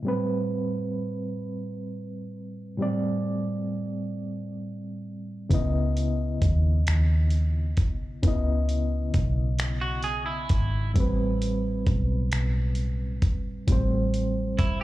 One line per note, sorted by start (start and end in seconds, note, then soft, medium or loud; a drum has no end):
0.03 2.72 A2 medium
0.03 2.74 G3 medium
0.07 2.74 C4 medium
0.07 2.75 B4 medium
2.77 5.46 A2 medium
2.77 5.47 G3 medium
2.77 5.48 C4 medium
2.82 5.49 D5 medium
5.49 6.37 C#2 medium
5.49 8.19 C#3 medium
5.49 8.19 B3 medium
5.49 8.20 E4 medium
5.49 kick medium
5.49 closed hi-hat medium
5.54 8.21 D#5 medium
5.97 closed hi-hat soft
6.42 6.83 D#2 medium
6.42 kick medium
6.42 closed hi-hat soft
6.87 7.78 D#2 medium
6.87 finger snap loud
6.87 closed hi-hat medium
7.30 closed hi-hat soft
7.77 8.19 B1 medium
7.77 kick medium
7.77 closed hi-hat soft
8.23 9.10 C#2 medium
8.23 10.91 C#3 medium
8.23 10.92 B3 medium
8.23 10.93 E4 medium
8.23 kick medium
8.23 closed hi-hat medium
8.28 10.94 D#5 medium
8.69 closed hi-hat soft
9.14 10.47 B1 medium
9.14 kick medium
9.14 closed hi-hat soft
9.59 finger snap loud
9.59 closed hi-hat medium
9.81 10.03 F#4 medium
10.03 10.25 G#4 medium
10.03 closed hi-hat soft
10.26 10.91 E4 medium
10.49 10.92 G#1 medium
10.49 kick medium
10.49 closed hi-hat soft
10.94 11.83 A1 medium
10.94 13.64 A2 medium
10.94 13.64 G3 medium
10.94 13.65 C4 medium
10.94 kick medium
10.94 closed hi-hat medium
11.00 13.66 B4 medium
11.42 closed hi-hat soft
11.86 12.28 B1 medium
11.86 kick medium
11.86 closed hi-hat soft
12.32 13.23 B1 medium
12.32 finger snap medium
12.32 closed hi-hat medium
12.75 closed hi-hat soft
13.22 13.64 G1 medium
13.22 kick medium
13.22 closed hi-hat soft
13.67 14.59 A1 medium
13.67 14.84 A2 medium
13.67 14.84 G3 medium
13.67 14.84 C4 medium
13.67 kick medium
13.67 closed hi-hat medium
13.72 14.84 C5 medium
14.14 closed hi-hat soft
14.59 14.84 G1 medium
14.59 14.80 E4 medium
14.59 kick medium
14.59 closed hi-hat soft